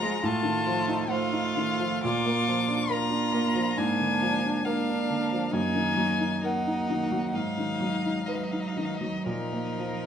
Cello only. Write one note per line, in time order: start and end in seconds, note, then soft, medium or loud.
0.00 0.25 G#3 medium
0.24 1.09 A3 medium
1.10 2.04 A3 medium
2.03 2.90 A#3 medium
2.91 3.76 A#3 medium
3.77 4.64 A#3 medium
4.67 5.53 A#3 medium
5.54 6.42 A#3 medium
6.47 7.38 A#3 medium
7.37 8.26 F#3 soft
8.27 9.27 F#3 soft
9.25 10.06 F3 soft